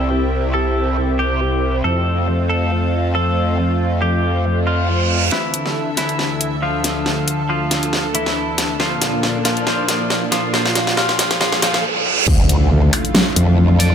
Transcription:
Already playing: C2 C3 C4 E4 G4 A4
0.54 A4
1.19 G4
1.84 F2 A3 F4 A4
2.50 A4
3.15 A4
4.02 G4
4.45 reverse cymbal
4.67 F4
5.32 D2 D3 E3 E4 A4 E5, snare, riser
5.54 closed hi-hat
5.66 snare
5.97 E3 E4, snare, closed hi-hat
6.09 closed hi-hat
6.19 snare
6.41 closed hi-hat
6.62 F3 F4
6.84 snare, closed hi-hat
7.06 snare
7.28 closed hi-hat
7.49 F3 F4
7.71 snare, closed hi-hat
7.83 closed hi-hat
7.93 snare
8.14 E3 E4, closed hi-hat
8.26 snare
8.58 snare, closed hi-hat
8.80 A#2 F3 A#3 D4 F4, snare
9.02 snare, closed hi-hat
9.23 snare
9.45 F3 F4, snare, closed hi-hat
9.57 closed hi-hat
9.67 F3 F4, snare
9.88 snare, closed hi-hat
10.10 snare
10.32 F3 F4, snare, closed hi-hat
10.53 F3 F4, snare
10.66 snare
10.75 snare, closed hi-hat
10.87 snare
10.97 F3 F4, snare
11.09 snare
11.19 snare, closed hi-hat
11.31 snare, closed hi-hat
11.40 F3 F4, snare, reverse cymbal
11.52 snare
11.62 F3 F4, snare, closed hi-hat
11.74 snare
11.84 high tom
11.96 high tom
12.06 mid tom
12.18 mid tom
12.28 D2 D3 A3 E4 F4, kick, crash, impact
12.49 closed hi-hat
12.71 D2
12.93 finger snap, open hi-hat
13.05 closed hi-hat
13.15 snare
13.36 F2, closed hi-hat
13.80 D4 A4 D5, open hi-hat

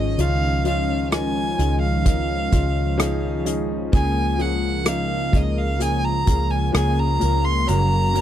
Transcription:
Already playing: G#1 D#3 F3 G#3 C#4 D#4 F4 G#4 D#5
0.18 C#2 C#3 F3 C#4 D#4 F4 F5, closed hi-hat
0.64 F3 C#4 D#4 F4 F5, closed hi-hat
1.12 F3 C#4 D#4 A#4 G#5, cross-stick, closed hi-hat
1.58 C#2 F3 C#4 D#4 G#4, closed hi-hat
1.82 F5
2.04 F3 C#4 D#4 A#4, kick, closed hi-hat
2.51 C#2 F3 C#4 D#4 F4, kick, closed hi-hat
2.98 F3 C#4 D#4 G#4, cross-stick, closed hi-hat
3.45 F3 C#4 D#4 G#4, closed hi-hat
3.92 C#2 C#3 F3 A#3 C#4 G#4 G#5, kick, closed hi-hat
4.38 F3 A#3 C#4 G#4 F#5, closed hi-hat
4.85 F3 A#3 C#4 D#4 F4 F5, cross-stick, closed hi-hat
5.32 C#2 F3 A#3 C#4 G#4 D#5, kick, closed hi-hat
5.58 F5
5.78 F3 A#3 C#4 G#4 G#5, closed hi-hat
6.05 A#5
6.26 C#2 F3 A#3 C#4 F4 G#4, kick, closed hi-hat
6.50 G#5
6.72 C#2 F3 A#3 C#4 G#4 G#5, cross-stick, closed hi-hat
6.99 A#5
7.20 C#2 F3 A#3 C#4 A#4, closed hi-hat
7.45 C6
7.66 F#1 F#2 F#3 A#3 C#4 F#4 A#4 A#5, closed hi-hat
8.13 F#3 A#3 C#4 A#4, closed hi-hat

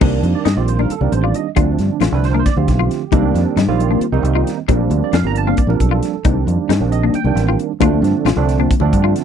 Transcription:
0.01 C2 D#3 G3 A#3 C4 D4 D#4, kick, crash, high conga, low conga
0.23 F2, closed hi-hat, low conga
0.35 D5
0.45 G2 D#4 D#5, snare, closed hi-hat, low conga
0.56 A#1 D#3 G3 A#3 C4 F4 D5
0.68 C5, closed hi-hat
0.79 D4 A#4, high conga
0.90 A4, closed hi-hat
1.01 C2 D#3 G3 A#3 C4 D4 A#4, low conga
1.12 A1 C5, closed hi-hat
1.24 F4 D5
1.34 D#5, closed hi-hat, low conga
1.56 D2 D3 F3 A3 C4 D4 F4, kick, closed hi-hat, high conga, low conga
1.79 G2, snare, closed hi-hat, low conga
2.00 A1 F4, snare, closed hi-hat, low conga
2.12 C2 D3 F3 A3 C4 D4 B4
2.24 C5, snare, closed hi-hat
2.33 D4 A#4, high conga
2.39 C5
2.46 D5, kick, snare, closed hi-hat
2.56 D2 D3 F3 A3 C4 F4 G4, low conga
2.68 B1, kick, snare, closed hi-hat
2.79 F4
2.90 snare, closed hi-hat, low conga
3.12 C2 D#3 G3 A#3 C4 D4 D#4, kick, closed hi-hat, high conga, low conga
3.34 F2, snare, closed hi-hat, low conga
3.56 G2 D#4, snare, closed hi-hat, low conga
3.67 A#1 D#3 G3 A#3 C4 F4
3.80 closed hi-hat
3.91 D4, high conga
4.01 muted fingered electric bass stroke, closed hi-hat
4.12 C2 D#3 G3 A#3 C4 D#4, low conga
4.23 C2, closed hi-hat
4.35 F4
4.47 snare, closed hi-hat, low conga
4.68 A#1 F3 G3 A#3 C4 D4, kick, closed hi-hat, high conga, low conga
4.80 low conga
4.90 D2, closed hi-hat
5.03 D5, low conga
5.13 F2 D4 F5, snare, closed hi-hat, low conga
5.23 G1 F3 G3 A#3 C4 D4 A#5
5.36 A5, closed hi-hat
5.47 C4 F5, high conga
5.57 D5, muted fingered electric bass stroke, kick, closed hi-hat
5.67 A#1 F3 G3 A#3 C4 D4 A#4, low conga
5.80 B1 A4, kick, closed hi-hat, low conga
5.91 F4
6.03 snare, closed hi-hat
6.15 low conga
6.25 C2 D#3 G3 A#3 C4 D4 D#4, kick, closed hi-hat, high conga, low conga
6.47 F2, closed hi-hat, low conga
6.69 G2 D#4, snare, closed hi-hat, low conga
6.80 A#1 D#3 G3 A#3 C4 D4
6.92 D#5, closed hi-hat
7.03 D4, high conga
7.14 G5, closed hi-hat
7.24 C2 D#3 G3 A#3 C4 D4, low conga
7.35 A1, snare, closed hi-hat
7.49 F4
7.59 closed hi-hat, low conga
7.80 D2 D3 F3 A3 C4 D4 F4, kick, closed hi-hat, high conga, low conga
8.02 G2, snare, closed hi-hat, low conga
8.25 A1 F4, snare, closed hi-hat, low conga
8.36 C2 D3 F3 A3 C4 D4
8.49 snare, closed hi-hat
8.59 D4, high conga
8.71 kick, closed hi-hat
8.80 D2 D3 F3 A3 C4 D4, low conga
8.93 G2, kick, closed hi-hat
9.04 F4
9.14 snare, closed hi-hat, low conga

